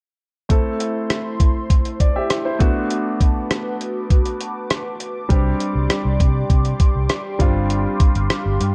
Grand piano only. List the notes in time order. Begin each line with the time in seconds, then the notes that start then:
0.49 A3 C4 E4 A4
2.00 D5
2.16 G4 E5
2.45 E4 C5
2.59 A3 B3 D4 F#4
5.29 G3 C4 D4 G4
7.39 G3 C4 D4 F4